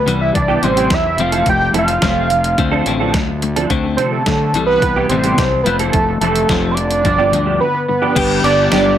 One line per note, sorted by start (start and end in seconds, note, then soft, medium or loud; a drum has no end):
0.00 0.21 B4 loud
0.06 0.32 C2 medium
0.06 0.33 C3 medium
0.06 0.33 E3 loud
0.06 0.34 G3 loud
0.06 closed hi-hat medium
0.21 0.34 E5 medium
0.34 0.61 C2 medium
0.34 0.60 C3 medium
0.34 0.60 E3 medium
0.34 0.65 D5 medium
0.34 muted clean electric guitar stroke soft
0.34 kick loud
0.34 closed hi-hat medium
0.48 0.67 G3 medium
0.48 0.67 B3 medium
0.48 0.67 E4 medium
0.48 0.67 G4 loud
0.62 0.88 A1 medium
0.62 0.89 C3 medium
0.62 0.89 E3 medium
0.62 0.90 G3 loud
0.62 0.95 C5 loud
0.62 closed hi-hat medium
0.76 0.95 G3 medium
0.76 0.95 B3 medium
0.76 0.95 E4 medium
0.76 0.95 G4 medium
0.76 closed hi-hat medium
0.90 1.16 E2 medium
0.90 1.16 C3 medium
0.90 1.16 E3 medium
0.90 1.23 E5 loud
0.90 kick loud
0.90 snare loud
0.90 closed hi-hat medium
1.05 muted clean electric guitar stroke soft
1.17 1.43 F1 medium
1.17 1.45 F3 medium
1.17 1.45 A3 medium
1.17 1.46 C4 loud
1.17 closed hi-hat medium
1.22 1.48 F5 loud
1.32 1.51 E3 medium
1.32 1.51 C4 medium
1.32 1.50 E4 medium
1.32 1.50 A4 medium
1.32 closed hi-hat medium
1.46 1.72 F1 medium
1.46 1.72 F3 medium
1.46 1.72 A3 medium
1.46 1.74 G5 loud
1.46 kick medium
1.46 closed hi-hat medium
1.60 muted clean electric guitar stroke medium
1.73 1.99 F1 loud
1.73 1.92 E3 medium
1.73 2.00 F3 medium
1.73 2.00 A3 medium
1.73 1.92 C4 medium
1.73 1.92 E4 medium
1.73 1.92 A4 medium
1.73 closed hi-hat medium
1.78 3.40 F5 loud
1.88 closed hi-hat medium
2.02 2.54 F1 medium
2.02 2.29 F3 loud
2.02 2.29 A3 loud
2.02 2.29 C4 medium
2.02 muted clean electric guitar stroke soft
2.02 kick loud
2.02 snare loud
2.02 closed hi-hat medium
2.30 2.56 F3 medium
2.30 closed hi-hat medium
2.44 closed hi-hat medium
2.58 2.84 D2 medium
2.58 2.84 D3 medium
2.58 2.85 A3 medium
2.58 2.85 C4 loud
2.58 muted clean electric guitar stroke soft
2.58 kick loud
2.58 closed hi-hat medium
2.72 2.90 F3 medium
2.72 2.90 C4 medium
2.72 2.90 D4 medium
2.72 2.90 A4 loud
2.86 3.12 A1 medium
2.86 3.12 D3 medium
2.86 3.13 A3 loud
2.86 3.13 C4 loud
2.86 closed hi-hat medium
3.00 3.19 F3 medium
3.00 3.19 C4 medium
3.00 3.18 D4 medium
3.00 3.18 A4 medium
3.14 3.66 D2 medium
3.14 3.39 A3 medium
3.14 kick loud
3.14 snare loud
3.14 closed hi-hat medium
3.27 muted clean electric guitar stroke soft
3.42 3.67 D3 medium
3.42 3.68 A3 medium
3.42 closed hi-hat medium
3.56 3.71 F3 medium
3.56 3.70 C4 medium
3.56 3.70 D4 medium
3.56 3.70 A4 medium
3.56 closed hi-hat medium
3.70 3.96 D2 medium
3.70 3.96 D3 medium
3.70 3.97 A3 loud
3.70 3.97 C4 loud
3.70 kick loud
3.70 closed hi-hat medium
3.83 muted clean electric guitar stroke soft
3.97 4.23 C3 medium
3.97 4.24 D3 medium
3.97 4.16 F3 medium
3.97 4.24 A3 medium
3.97 4.16 C4 medium
3.97 4.16 D4 medium
3.97 4.17 A4 medium
3.97 4.10 C5 medium
3.97 closed hi-hat medium
4.12 4.64 A4 medium
4.26 4.52 D3 medium
4.26 4.52 A3 medium
4.26 muted clean electric guitar stroke soft
4.26 kick loud
4.26 snare loud
4.26 closed hi-hat medium
4.53 4.79 C2 medium
4.53 4.81 C3 medium
4.53 4.81 E3 loud
4.53 4.81 G3 loud
4.53 closed hi-hat medium
4.66 5.06 B4 loud
4.82 5.08 C2 medium
4.82 5.08 C3 medium
4.82 5.08 E3 medium
4.82 muted clean electric guitar stroke soft
4.82 kick loud
4.82 closed hi-hat medium
4.96 5.15 G3 medium
4.96 5.15 B3 medium
4.96 5.15 E4 medium
4.96 5.14 G4 loud
5.09 5.35 A1 medium
5.09 5.37 C3 medium
5.09 5.37 E3 medium
5.09 5.37 G3 medium
5.09 5.61 C5 loud
5.09 closed hi-hat medium
5.24 5.42 G3 medium
5.24 5.42 B3 medium
5.24 5.42 E4 medium
5.24 5.42 G4 medium
5.24 closed hi-hat medium
5.38 5.63 C2 medium
5.38 5.63 C3 medium
5.38 5.63 E3 medium
5.38 kick loud
5.38 snare loud
5.38 closed hi-hat medium
5.52 muted clean electric guitar stroke medium
5.63 5.91 F1 medium
5.63 5.92 F3 medium
5.63 5.92 A3 medium
5.63 5.76 B4 medium
5.63 closed hi-hat medium
5.67 5.93 C4 loud
5.79 5.98 E3 medium
5.79 5.98 C4 medium
5.79 5.98 E4 medium
5.79 5.98 A4 medium
5.79 closed hi-hat medium
5.92 6.19 F1 medium
5.92 6.19 F3 medium
5.92 6.19 A3 medium
5.92 6.18 A4 medium
5.92 kick loud
5.92 closed hi-hat medium
6.09 muted clean electric guitar stroke medium
6.21 6.47 F1 medium
6.21 6.40 E3 medium
6.21 6.47 F3 medium
6.21 6.47 A3 medium
6.21 6.40 C4 medium
6.21 6.40 E4 loud
6.21 6.73 A4 medium
6.21 6.41 A4 medium
6.21 closed hi-hat medium
6.36 closed hi-hat medium
6.49 7.05 F1 medium
6.49 6.76 F3 medium
6.49 6.76 A3 medium
6.49 6.77 C4 loud
6.49 muted clean electric guitar stroke soft
6.49 kick loud
6.49 snare loud
6.49 closed hi-hat medium
6.71 6.76 C5 medium
6.71 7.59 D5 loud
6.77 7.02 F3 medium
6.77 7.03 A3 medium
6.77 closed hi-hat medium
6.91 closed hi-hat medium
7.05 7.31 G1 medium
7.05 7.31 G2 medium
7.05 7.31 D3 medium
7.05 7.32 F3 loud
7.05 muted clean electric guitar stroke soft
7.05 kick loud
7.05 closed hi-hat medium
7.18 7.37 F3 medium
7.18 7.37 B3 medium
7.18 7.37 D4 medium
7.18 7.37 G4 medium
7.32 7.58 D2 medium
7.32 7.59 G2 medium
7.32 7.59 D3 medium
7.32 7.60 F3 medium
7.32 closed hi-hat medium
7.46 7.65 F3 medium
7.46 7.65 B3 medium
7.46 7.64 D4 medium
7.46 7.64 G4 medium
7.61 7.86 G2 medium
7.61 7.86 D3 medium
7.61 7.87 B4 loud
7.74 muted clean electric guitar stroke soft
7.88 8.14 G2 medium
7.88 8.14 D3 medium
7.88 8.40 B4 loud
8.02 8.17 F3 medium
8.02 8.15 B3 medium
8.02 8.16 D4 medium
8.02 8.16 G4 medium
8.16 8.43 G1 medium
8.16 8.42 G2 loud
8.16 8.42 D3 loud
8.16 8.44 G3 loud
8.16 8.45 B3 loud
8.16 8.43 B3 medium
8.16 8.45 D4 loud
8.16 8.44 D4 medium
8.16 8.98 G4 medium
8.16 8.44 G4 loud
8.16 8.45 G4 loud
8.16 kick loud
8.16 open hi-hat medium
8.16 crash loud
8.43 8.70 G1 loud
8.43 8.71 G2 medium
8.43 8.71 D3 medium
8.43 8.72 G3 medium
8.43 8.70 B3 medium
8.43 8.73 B3 loud
8.43 8.71 D4 medium
8.43 8.74 D4 medium
8.43 8.71 G4 medium
8.43 8.74 G4 medium
8.43 8.96 D5 loud
8.43 open hi-hat medium
8.71 8.98 G1 medium
8.71 8.98 G2 medium
8.71 8.98 D3 medium
8.71 8.98 G3 medium
8.71 8.98 B3 medium
8.71 8.98 B3 loud
8.71 8.98 D4 medium
8.71 8.98 G4 medium
8.71 8.98 G4 loud
8.71 snare loud
8.71 open hi-hat medium